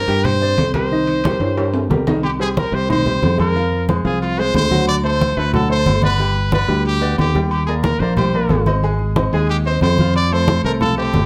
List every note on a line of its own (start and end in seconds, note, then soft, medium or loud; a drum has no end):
0.00 0.26 A#4 loud
0.08 0.54 G2 loud
0.08 0.36 G3 medium
0.08 0.36 G4 medium
0.08 0.36 G5 medium
0.08 high conga soft
0.08 high timbale medium
0.24 0.74 C5 loud
0.24 high conga soft
0.24 low conga medium
0.24 high timbale medium
0.41 0.68 C4 medium
0.41 0.69 C5 medium
0.41 0.69 D5 medium
0.41 high conga soft
0.57 1.34 C2 medium
0.57 high conga medium
0.57 high timbale medium
0.57 low timbale medium
0.74 0.89 G3 medium
0.74 0.89 G4 medium
0.74 0.89 A#4 medium
0.74 1.86 C5 medium
0.74 high conga medium
0.74 high timbale medium
0.92 1.19 D#3 medium
0.92 1.19 D#4 medium
0.92 1.19 D#5 medium
0.92 high conga soft
1.07 high conga soft
1.07 high timbale medium
1.24 1.52 G3 medium
1.24 1.52 G4 medium
1.24 1.52 A#4 medium
1.24 high conga medium
1.24 high timbale medium
1.24 low timbale medium
1.40 1.86 G2 loud
1.40 high conga soft
1.40 high timbale medium
1.57 1.84 G3 medium
1.57 1.84 G4 medium
1.57 1.84 A#4 medium
1.57 high conga soft
1.57 high timbale medium
1.74 high conga soft
1.74 low timbale medium
1.90 2.67 C2 medium
1.90 2.04 G3 medium
1.90 2.04 G4 medium
1.90 2.04 A#4 medium
1.90 high conga medium
1.90 low timbale medium
2.07 2.20 D#3 medium
2.07 2.21 D#4 medium
2.07 2.21 D#5 medium
2.07 high conga medium
2.07 low timbale loud
2.23 2.31 G4 medium
2.23 high conga soft
2.23 low agogo loud
2.39 2.67 G3 medium
2.39 2.67 G4 medium
2.39 2.48 G#4 medium
2.39 2.67 C5 medium
2.39 high conga soft
2.57 2.76 A#4 medium
2.57 high conga loud
2.57 low timbale medium
2.57 low agogo medium
2.72 3.19 C2 loud
2.72 2.86 G3 medium
2.72 2.87 G4 medium
2.72 2.86 C5 medium
2.72 2.90 C5 loud
2.72 high conga soft
2.89 3.03 D#3 medium
2.89 3.03 D#4 medium
2.89 3.36 C5 loud
2.89 3.03 D#5 medium
2.89 high conga soft
2.89 low conga medium
2.89 low agogo loud
3.06 3.33 G3 medium
3.06 3.33 G4 medium
3.06 3.33 C5 medium
3.06 high conga soft
3.06 low conga medium
3.23 3.99 F2 medium
3.23 high conga medium
3.23 low timbale medium
3.23 low agogo medium
3.38 3.52 G#3 medium
3.38 3.52 G#4 medium
3.38 3.85 A#4 medium
3.38 3.52 C5 medium
3.38 high conga medium
3.38 low agogo loud
3.55 3.82 F3 medium
3.55 3.82 F4 medium
3.55 3.83 F5 medium
3.55 high conga soft
3.55 low agogo medium
3.72 high conga soft
3.88 4.02 G#3 medium
3.88 4.02 G#4 medium
3.88 4.02 C5 medium
3.88 high conga medium
3.88 low timbale medium
3.88 low agogo medium
4.05 4.51 C2 loud
4.05 4.32 F3 medium
4.05 4.32 F4 medium
4.05 4.21 G#4 medium
4.05 4.32 F5 medium
4.05 high conga soft
4.22 4.41 F4 loud
4.22 high conga soft
4.22 low agogo medium
4.38 4.65 G#3 medium
4.38 4.66 G#4 medium
4.38 4.66 C5 medium
4.38 4.55 C5 loud
4.38 high conga soft
4.38 low agogo medium
4.54 5.31 D2 medium
4.54 4.86 C5 loud
4.54 high conga medium
4.54 low timbale medium
4.54 low agogo loud
4.71 4.98 F#3 loud
4.71 4.98 F#4 medium
4.71 4.99 F#5 medium
4.71 high conga medium
4.88 4.96 D5 loud
4.88 high conga soft
4.88 low agogo loud
5.04 5.31 A3 medium
5.04 5.31 A4 medium
5.04 5.39 C5 loud
5.04 5.31 C5 medium
5.04 high conga soft
5.21 high conga medium
5.21 low timbale medium
5.21 low agogo medium
5.37 5.83 D2 loud
5.37 5.51 A3 medium
5.37 5.51 A4 medium
5.37 5.54 B4 loud
5.37 5.51 C5 medium
5.37 high conga soft
5.53 5.67 F#3 medium
5.53 5.67 F#4 medium
5.53 5.69 A4 medium
5.53 5.68 F#5 medium
5.53 high conga soft
5.53 low conga medium
5.53 low agogo loud
5.69 5.97 A3 medium
5.69 5.97 A4 medium
5.69 5.97 C5 medium
5.69 6.01 C5 loud
5.69 high conga soft
5.86 6.63 G1 medium
5.86 high conga medium
5.86 low timbale medium
5.86 low agogo medium
6.02 6.16 B3 medium
6.02 6.16 B4 medium
6.02 6.50 B4 loud
6.02 6.17 D5 medium
6.02 high conga medium
6.02 low agogo loud
6.19 6.46 G3 medium
6.19 6.47 G4 medium
6.19 6.47 G5 medium
6.19 high conga soft
6.19 low agogo medium
6.36 high conga soft
6.52 6.66 B3 medium
6.52 6.66 B4 medium
6.52 6.84 B4 loud
6.52 6.67 D5 medium
6.52 high conga loud
6.52 low timbale medium
6.52 low agogo medium
6.68 7.15 D2 loud
6.68 6.96 G3 medium
6.68 6.96 G4 medium
6.68 6.96 G5 medium
6.68 high conga soft
6.85 7.16 G4 loud
6.85 high conga soft
6.85 low agogo medium
7.01 7.29 B3 medium
7.01 7.29 B4 medium
7.01 7.29 D5 medium
7.01 high conga soft
7.01 low agogo medium
7.18 7.95 D#2 medium
7.18 7.42 G4 medium
7.18 high conga medium
7.18 low timbale medium
7.18 low agogo loud
7.35 7.62 G3 loud
7.35 7.62 G4 loud
7.35 7.62 G5 medium
7.35 high conga medium
7.51 7.66 G4 medium
7.51 high conga soft
7.51 low agogo loud
7.67 7.95 A#3 medium
7.67 7.74 G#4 medium
7.67 7.95 A#4 medium
7.67 7.96 D5 medium
7.67 high conga soft
7.84 8.01 A#4 medium
7.84 high conga loud
7.84 low timbale medium
7.84 low agogo medium
8.00 8.46 A#1 loud
8.00 8.15 A#3 medium
8.00 8.15 A#4 medium
8.00 8.16 C5 medium
8.00 8.15 D5 medium
8.00 high conga soft
8.17 8.31 G3 medium
8.17 8.31 G4 medium
8.17 8.63 C5 medium
8.17 8.31 G5 medium
8.17 high conga soft
8.17 low conga medium
8.17 low agogo loud
8.33 8.61 A#3 medium
8.33 8.61 A#4 medium
8.33 8.62 D5 medium
8.33 high conga soft
8.49 9.27 G#1 medium
8.49 high conga medium
8.49 low timbale medium
8.49 low agogo loud
8.66 8.80 C4 medium
8.66 8.80 C5 medium
8.66 8.81 D#5 medium
8.66 high conga medium
8.66 low agogo loud
8.83 9.10 G#3 medium
8.83 9.11 G#4 medium
8.83 9.11 G#5 medium
8.83 high conga soft
8.83 low agogo medium
8.99 high conga soft
9.16 9.30 C4 medium
9.16 9.30 C5 medium
9.16 9.30 D#5 medium
9.16 high conga loud
9.16 low timbale medium
9.16 low agogo medium
9.33 9.79 D#2 loud
9.33 9.60 G#3 loud
9.33 9.48 G#4 medium
9.33 9.60 G#4 medium
9.33 9.61 G#5 medium
9.33 high conga soft
9.49 9.57 G4 loud
9.49 high conga soft
9.49 low agogo medium
9.65 9.93 C4 medium
9.65 9.81 C5 loud
9.65 9.93 C5 medium
9.65 9.93 D#5 medium
9.65 high conga soft
9.65 low agogo medium
9.81 10.59 F2 medium
9.81 10.13 C5 loud
9.81 high conga medium
9.81 low timbale loud
9.81 low agogo loud
9.98 10.27 F3 loud
9.98 10.27 F4 loud
9.98 10.27 F5 medium
9.98 high conga medium
10.15 10.34 D5 loud
10.15 high conga soft
10.15 low agogo loud
10.32 10.59 A3 medium
10.32 10.59 A4 medium
10.32 10.59 C5 medium
10.32 10.64 C5 loud
10.32 high conga soft
10.48 high conga loud
10.48 low timbale medium
10.48 low agogo medium
10.64 11.11 C2 loud
10.64 10.79 A3 medium
10.64 10.79 A4 medium
10.64 10.72 A#4 medium
10.64 10.79 C5 medium
10.64 high conga soft
10.81 10.95 F3 medium
10.81 10.95 F4 medium
10.81 10.96 A4 loud
10.81 10.95 F5 medium
10.81 high conga soft
10.81 low conga medium
10.81 low agogo loud
10.97 11.25 A3 medium
10.97 11.26 G4 medium
10.97 11.25 A4 medium
10.97 11.25 C5 medium
10.97 high conga soft
11.14 11.26 G1 medium
11.14 high conga medium
11.14 low timbale medium
11.14 low agogo loud